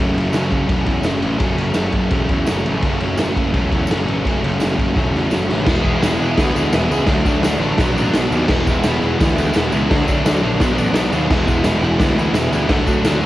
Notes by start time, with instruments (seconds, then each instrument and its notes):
0.00 picked electric bass F#1, overdriven electric guitar F#2 C#3 F#3 A3 C#4
0.13 picked electric bass F#1, overdriven electric guitar C#4
0.18 overdriven electric guitar F#3 A3, ride
0.32 picked electric bass F#1, overdriven electric guitar F#2 C#3, snare, ride, tambourine
0.36 overdriven electric guitar F#3 A3 C#4
0.51 picked electric bass F#1, overdriven electric guitar F#3 A3 C#4, kick, ride
0.67 picked electric bass E1, overdriven electric guitar C#3 F#3 A3 C#4, kick, ride
0.85 picked electric bass E2, overdriven electric guitar F#3 A3 C#4, kick, ride
1.03 picked electric bass F#1, overdriven electric guitar F#2 C#3 F#3 A3 C#4, snare, ride, tambourine
1.20 picked electric bass A1, overdriven electric guitar F#3 A3 C#4, ride
1.37 picked electric bass F#1, overdriven electric guitar F#2 C#3 F#3 A3 C#4, kick, ride
1.56 picked electric bass F#1, overdriven electric guitar F#3 A3 C#4, ride
1.73 picked electric bass F#1, overdriven electric guitar F#2 C#3 F#3 A3 C#4, snare, ride, tambourine
1.92 picked electric bass F#1, overdriven electric guitar A3 C#4, kick, ride
1.96 overdriven electric guitar F#3
2.11 picked electric bass E1, overdriven electric guitar C#3 F#3 A3 C#4, kick, ride
2.29 picked electric bass E2, overdriven electric guitar A3 C#4, kick, ride
2.33 overdriven electric guitar F#3
2.46 picked electric bass F#1, overdriven electric guitar F#2 C#3 F#3, snare, ride, tambourine
2.50 overdriven electric guitar A3 C#4
2.66 picked electric bass A1, overdriven electric guitar A3 C#4, ride
2.71 overdriven electric guitar F#3
2.82 picked electric bass F#1, overdriven electric guitar F#2 C#3 F#3, kick, ride
2.87 overdriven electric guitar A3 C#4
3.00 picked electric bass F#1, overdriven electric guitar A3 C#4, ride
3.05 overdriven electric guitar F#3
3.16 picked electric bass F#1, overdriven electric guitar F#2 C#3 F#3 A3 C#4, snare, ride, tambourine
3.36 picked electric bass F#1, overdriven electric guitar F#3 A3 C#4, kick, ride
3.54 picked electric bass E1, overdriven electric guitar C#3 F#3 A3 C#4, kick, ride
3.72 picked electric bass E2, overdriven electric guitar F#3 A3 C#4, kick, ride
3.87 picked electric bass F#1, overdriven electric guitar F#2 C#3, tambourine
3.91 overdriven electric guitar F#3 A3 C#4, snare, ride
4.05 picked electric bass A1, overdriven electric guitar A3 C#4, ride
4.11 overdriven electric guitar F#3
4.24 picked electric bass F#1, overdriven electric guitar F#2 C#3 F#3 A3 C#4, kick, ride
4.44 picked electric bass F#1, overdriven electric guitar F#3 A3 C#4, ride
4.59 picked electric bass F#1, overdriven electric guitar F#2 C#3 F#3 A3 C#4, snare, ride, tambourine
4.77 picked electric bass F#1, overdriven electric guitar F#3 A3 C#4, kick, ride
4.94 picked electric bass E1, overdriven electric guitar C#3 F#3 A3 C#4, kick, snare
5.13 picked electric bass E2, overdriven electric guitar F#3 A3 C#4, snare
5.30 picked electric bass F#1, overdriven electric guitar F#2 C#3 F#3 A3 C#4, snare, tambourine
5.49 picked electric bass A1, overdriven electric guitar F#3 A3 C#4, snare
5.66 picked electric bass E1, overdriven electric guitar E3 G#3 B3 E4 G#4, kick, snare, crash, tambourine
5.83 picked electric bass E1, overdriven electric guitar E3 G#3 B3 E4 G#4, kick
6.01 picked electric bass E1, overdriven electric guitar E3 G#3 B3 E4 G#4, snare, open hi-hat, tambourine
6.19 picked electric bass E1, overdriven electric guitar E3 G#3 B3 E4 G#4, tambourine
6.37 picked electric bass D2, overdriven electric guitar E3 G#3 B3 E4 G#4, kick, snare, open hi-hat, tambourine
6.55 picked electric bass D2, overdriven electric guitar E3 G#3 B3 E4 G#4, tambourine
6.72 picked electric bass E1, overdriven electric guitar E3 G#3 B3 E4 G#4, snare, open hi-hat, tambourine
6.90 picked electric bass C#2, overdriven electric guitar E3 G#3 B3 E4 G#4, tambourine
7.07 picked electric bass D2, overdriven electric guitar D3 F#3 A3 D4, kick, snare, open hi-hat, tambourine
7.25 picked electric bass D2, overdriven electric guitar D3 F#3 A3 D4, kick, tambourine
7.41 picked electric bass D2, overdriven electric guitar D3 F#3 A3 D4, snare, open hi-hat, tambourine
7.58 picked electric bass A1, overdriven electric guitar D3 F#3 A3
7.62 overdriven electric guitar D4, tambourine
7.78 picked electric bass B1, overdriven electric guitar B2 F#3 B3 D4, kick, snare, open hi-hat, tambourine
7.94 picked electric bass A1, tambourine
7.98 overdriven electric guitar B2 F#3 B3 D4
8.12 picked electric bass B1, snare, open hi-hat, tambourine
8.16 overdriven electric guitar B2 F#3 B3 D4
8.31 picked electric bass D#2, overdriven electric guitar B2 F#3, tambourine
8.35 overdriven electric guitar B3 D4
8.48 picked electric bass E1, overdriven electric guitar E3 G#3 B3 E4, kick, snare, tambourine, crash
8.66 picked electric bass E1, overdriven electric guitar E3 G#3 B3, kick, tambourine
8.70 overdriven electric guitar E4
8.83 picked electric bass E1, overdriven electric guitar E3 G#3 B3, snare, open hi-hat, tambourine
8.88 overdriven electric guitar E4
9.02 picked electric bass E1, overdriven electric guitar E3, tambourine
9.06 overdriven electric guitar G#3 B3 E4
9.19 picked electric bass D2, overdriven electric guitar E3 G#3 B3 E4, kick, snare, open hi-hat, tambourine
9.35 picked electric bass D2, overdriven electric guitar E3 G#3 B3 E4, tambourine
9.54 picked electric bass E1, overdriven electric guitar E3 G#3 B3 E4, snare, open hi-hat, tambourine
9.72 picked electric bass C#2, overdriven electric guitar E3 G#3 B3 E4, tambourine
9.89 picked electric bass D2, overdriven electric guitar D3 F#3 A3 D4, kick, snare, open hi-hat
10.05 picked electric bass D2, overdriven electric guitar D3 F#3 A3 D4, kick, tambourine
10.24 picked electric bass D2, overdriven electric guitar D3 F#3 A3 D4, snare, open hi-hat, tambourine
10.41 picked electric bass A#1, overdriven electric guitar D3 F#3 A3 D4
10.60 picked electric bass B1, overdriven electric guitar B2 F#3 B3 D4, kick, snare, open hi-hat, tambourine
10.74 picked electric bass A1, overdriven electric guitar B2 F#3 B3 D4, tambourine
10.94 picked electric bass B1, overdriven electric guitar B2 F#3 B3 D4, snare, open hi-hat, tambourine
11.12 picked electric bass D#2, overdriven electric guitar B2 F#3 B3 D4, tambourine
11.30 picked electric bass E1, overdriven electric guitar E3 G#3 B3 E4, kick, snare, tambourine, crash
11.47 picked electric bass E1, overdriven electric guitar E3 G#3 B3 E4, kick, tambourine
11.64 picked electric bass E1, overdriven electric guitar E3 G#3 B3 E4, snare, open hi-hat, tambourine
11.81 picked electric bass E1, overdriven electric guitar E3 G#3 B3 E4, tambourine
11.99 picked electric bass D2, overdriven electric guitar E3 G#3 B3 E4, kick, snare, open hi-hat, tambourine
12.15 picked electric bass D2, overdriven electric guitar E3
12.19 overdriven electric guitar G#3 B3 E4, tambourine
12.33 picked electric bass E1, overdriven electric guitar E3 G#3 B3 E4, snare, open hi-hat, tambourine
12.51 picked electric bass D2, overdriven electric guitar E3 G#3 B3 E4, tambourine
12.69 picked electric bass D2, overdriven electric guitar D3 F#3 A3 D4, kick, snare, open hi-hat, tambourine
12.86 picked electric bass D2, overdriven electric guitar D3 F#3 A3 D4, kick, tambourine
13.05 picked electric bass D2, overdriven electric guitar D3 F#3 A3 D4, snare, open hi-hat, tambourine
13.22 picked electric bass C#2, overdriven electric guitar D3, tambourine